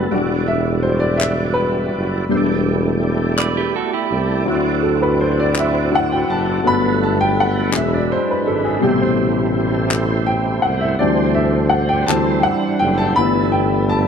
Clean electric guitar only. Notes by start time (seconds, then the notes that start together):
3.38 B4 D5
3.57 G4 B4
3.76 F#4 A4
3.93 E4 G4